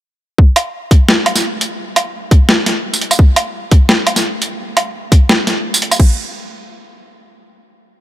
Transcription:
0.38 kick loud
0.56 closed hi-hat medium
0.56 low woodblock medium
0.91 kick loud
0.91 closed hi-hat medium
1.09 snare loud
1.26 closed hi-hat medium
1.26 low woodblock medium
1.36 snare soft
1.36 tambourine medium
1.61 closed hi-hat medium
1.61 tambourine soft
1.96 closed hi-hat medium
1.96 low woodblock medium
2.31 kick loud
2.31 closed hi-hat medium
2.49 snare loud
2.66 snare soft
2.66 closed hi-hat medium
2.94 tambourine medium
3.02 closed hi-hat medium
3.11 tambourine medium
3.11 low woodblock medium
3.19 kick loud
3.36 closed hi-hat medium
3.36 low woodblock medium
3.71 kick loud
3.71 closed hi-hat medium
3.89 snare loud
4.07 closed hi-hat medium
4.07 low woodblock medium
4.16 snare soft
4.16 tambourine medium
4.42 closed hi-hat medium
4.42 tambourine soft
4.77 closed hi-hat medium
4.77 low woodblock medium
5.12 kick loud
5.12 closed hi-hat medium
5.29 snare loud
5.47 snare soft
5.47 closed hi-hat medium
5.74 tambourine medium
5.82 closed hi-hat medium
5.91 tambourine medium
5.91 low woodblock medium
6.00 kick loud
6.00 crash medium

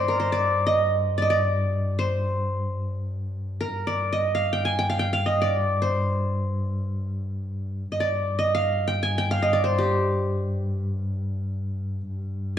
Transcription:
0.00 3.71 G2 medium
0.00 0.19 C5 medium
0.00 0.32 D5 medium
0.08 1.21 A#4 medium
0.20 1.25 C5 medium
0.32 0.73 D5 medium
0.67 1.22 D#5 medium
1.18 1.28 D5 medium
1.22 1.36 D#5 medium
1.30 2.29 D5 medium
1.99 3.04 C5 medium
3.61 4.74 A#4 medium
3.72 7.92 G2 medium
3.87 4.18 D5 medium
4.12 5.08 D#5 medium
4.35 4.89 F5 medium
4.53 4.71 G5 medium
4.65 4.85 G#5 medium
4.79 4.99 G5 medium
4.90 5.12 F5 medium
4.99 5.82 G5 medium
5.13 6.02 F5 medium
5.26 5.48 D#5 medium
5.42 6.40 D5 medium
5.82 7.05 C5 medium
7.92 12.08 G2 medium
7.92 8.06 D#5 medium
8.00 8.45 D5 medium
8.39 9.34 D#5 medium
8.55 9.31 F5 medium
8.88 9.09 G5 medium
9.03 9.24 G#5 medium
9.18 10.01 G5 medium
9.31 10.20 F5 medium
9.42 9.59 D#5 medium
9.53 10.52 D5 medium
9.64 10.69 C5 medium
9.78 11.04 G4 medium
12.08 12.59 G2 medium

